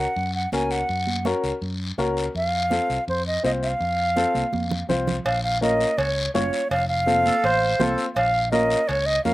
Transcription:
0.00 0.34 F#5 medium
0.16 0.45 F#2 medium
0.16 high conga soft
0.16 long guiro medium
0.35 0.52 F#5 medium
0.52 0.82 C#2 medium
0.52 0.78 C#4 medium
0.52 0.78 F#4 medium
0.52 0.79 A#4 medium
0.52 0.73 G#5 medium
0.52 high conga medium
0.52 short guiro medium
0.71 1.26 F#5 medium
0.71 short guiro medium
0.89 1.33 F#2 medium
0.89 high conga soft
0.89 long guiro medium
1.07 high conga medium
1.25 1.51 C#4 medium
1.25 1.51 F#4 medium
1.25 1.51 A#4 medium
1.25 high conga medium
1.25 short guiro medium
1.44 1.51 C#2 medium
1.44 short guiro medium
1.61 1.91 F#2 medium
1.61 high conga soft
1.61 long guiro medium
1.98 2.27 C#2 medium
1.98 2.24 C#4 medium
1.98 2.24 F#4 medium
1.98 2.24 A#4 medium
1.98 high conga medium
1.98 short guiro medium
2.17 short guiro medium
2.35 2.78 F2 medium
2.35 3.04 F5 loud
2.35 high conga soft
2.35 long guiro medium
2.70 2.96 C4 medium
2.70 2.96 F4 medium
2.70 2.97 A4 medium
2.70 high conga medium
2.70 short guiro medium
2.90 2.97 C2 medium
2.90 short guiro medium
3.08 3.37 F2 medium
3.08 3.25 C5 medium
3.08 high conga soft
3.08 long guiro medium
3.27 3.43 D#5 medium
3.43 3.73 C2 medium
3.43 3.69 C4 medium
3.43 3.69 F4 medium
3.43 3.69 C5 medium
3.43 3.51 D#5 medium
3.43 high conga medium
3.43 short guiro medium
3.62 4.86 F5 loud
3.62 short guiro medium
3.80 4.24 F2 medium
3.80 high conga soft
3.80 long guiro medium
4.16 4.42 C4 medium
4.16 4.42 F4 medium
4.16 4.42 A4 medium
4.16 high conga medium
4.16 short guiro medium
4.35 4.42 C2 medium
4.35 high conga medium
4.35 short guiro medium
4.53 4.82 F2 medium
4.53 high conga loud
4.53 long guiro medium
4.71 low conga medium
4.89 5.18 C2 medium
4.89 5.15 C4 medium
4.89 5.15 F4 medium
4.89 5.15 C5 medium
4.89 low conga medium
4.89 short guiro medium
5.07 low conga loud
5.07 short guiro medium
5.25 5.84 A#1 medium
5.25 5.42 F5 medium
5.25 cowbell loud
5.25 long guiro medium
5.44 5.61 F5 medium
5.61 5.87 C#4 medium
5.61 5.87 F4 medium
5.61 5.88 A#4 medium
5.61 5.99 D#5 medium
5.61 high conga medium
5.61 short guiro medium
5.81 short guiro medium
5.98 6.27 C#2 medium
5.98 6.34 C#5 medium
5.98 cowbell medium
5.98 long guiro medium
6.34 6.49 F#1 loud
6.34 6.60 C#4 medium
6.34 6.60 F4 medium
6.34 6.68 C#5 medium
6.34 6.60 C#5 medium
6.34 high conga medium
6.34 low timbale medium
6.34 short guiro medium
6.53 short guiro medium
6.71 7.29 F1 medium
6.71 6.88 F5 loud
6.71 cowbell medium
6.71 long guiro medium
6.88 7.94 F5 loud
7.06 7.32 C4 medium
7.06 7.33 F4 medium
7.06 7.33 A4 medium
7.06 high conga medium
7.06 short guiro medium
7.25 7.44 A4 medium
7.25 high conga medium
7.25 short guiro medium
7.44 7.73 A1 medium
7.44 7.81 C5 loud
7.44 cowbell medium
7.44 long guiro medium
7.79 7.95 C2 medium
7.79 8.05 C4 medium
7.79 8.05 F4 medium
7.79 8.05 A4 medium
7.79 8.05 C5 medium
7.79 high conga medium
7.79 low conga medium
7.79 short guiro medium
7.98 short guiro medium
8.15 8.74 A#1 medium
8.15 8.50 F5 loud
8.15 cowbell loud
8.15 long guiro medium
8.52 8.78 C#4 medium
8.52 8.78 F4 medium
8.52 8.78 A#4 medium
8.52 8.89 D#5 medium
8.52 high conga medium
8.52 short guiro medium
8.70 short guiro medium
8.88 9.18 C#2 medium
8.88 9.07 C#5 medium
8.88 cowbell medium
8.88 long guiro medium
9.06 9.24 D#5 loud
9.25 9.34 F2 loud
9.25 9.34 C#4 medium
9.25 9.34 F4 medium
9.25 9.34 A#4 medium
9.25 9.34 F5 medium
9.25 high conga medium
9.25 short guiro medium

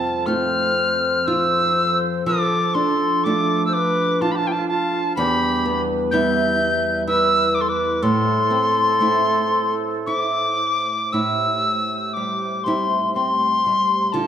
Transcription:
0.00 2.26 F2 medium
0.00 5.13 F3 medium
0.00 0.26 C4 soft
0.00 2.24 C4 medium
0.00 0.30 F4 medium
0.00 5.14 A4 medium
0.00 0.28 A5 medium
0.26 3.25 A3 medium
0.26 2.36 C4 soft
0.26 1.27 F4 medium
0.26 1.30 C5 medium
0.26 1.28 F6 medium
1.27 3.26 F4 medium
1.27 2.26 C5 medium
1.27 1.99 E6 medium
2.26 5.17 F3 medium
2.26 5.15 D4 medium
2.26 2.77 A4 medium
2.26 2.76 D6 medium
2.74 3.24 D4 medium
2.74 3.26 A4 medium
2.74 3.25 C6 medium
3.24 5.27 A3 medium
3.24 5.27 D4 medium
3.24 4.21 F4 medium
3.24 3.66 A4 medium
3.24 3.65 D6 medium
3.66 3.76 C5 medium
3.66 3.75 E6 medium
3.73 4.23 B4 medium
3.73 4.23 D6 medium
4.21 4.35 F4 medium
4.21 5.27 F4 medium
4.21 4.33 A5 loud
4.32 4.40 G4 medium
4.32 4.37 B5 medium
4.36 4.52 F4 medium
4.36 4.49 A5 loud
4.47 4.54 E4 medium
4.47 4.54 G5 medium
4.52 4.69 F4 medium
4.52 4.67 A5 medium
4.68 5.14 F4 medium
4.68 5.13 A5 medium
5.16 8.03 E2 loud
5.16 8.00 G3 medium
5.16 11.10 E4 medium
5.16 5.83 G4 medium
5.16 8.00 B4 medium
5.16 5.82 B5 loud
5.66 6.12 B3 medium
6.11 8.12 G3 medium
6.11 8.12 B3 medium
6.11 7.07 E4 medium
6.11 7.04 E5 medium
6.11 7.02 G6 loud
7.07 9.01 E4 medium
7.07 7.54 B4 medium
7.07 7.56 E6 loud
7.54 7.62 B4 medium
7.54 7.63 D6 medium
7.60 7.71 A4 medium
7.60 7.70 C6 medium
7.68 8.04 B4 medium
7.68 8.04 D6 medium
8.02 11.12 A2 medium
8.02 11.10 A3 medium
8.02 10.61 A4 medium
8.02 11.10 C5 medium
8.02 9.75 C6 loud
8.51 9.00 C4 medium
9.00 12.16 A3 soft
9.00 12.51 C4 medium
9.00 10.07 E4 medium
10.06 11.14 E4 medium
10.06 11.14 D6 loud
11.12 14.13 A2 medium
11.12 14.27 A3 medium
11.12 12.65 E4 medium
11.12 14.10 G4 medium
11.12 14.11 C5 medium
11.12 12.15 E6 medium
12.13 12.65 G3 soft
12.13 12.65 D6 medium
12.64 13.65 G3 soft
12.64 13.15 C4 soft
12.64 14.14 E4 medium
12.64 13.13 C6 medium
13.14 14.23 C4 soft
13.14 14.14 C6 medium
13.66 14.23 G3 soft
14.12 14.27 D3 medium
14.12 14.27 F4 medium
14.12 14.27 D5 medium
14.12 14.27 A5 medium

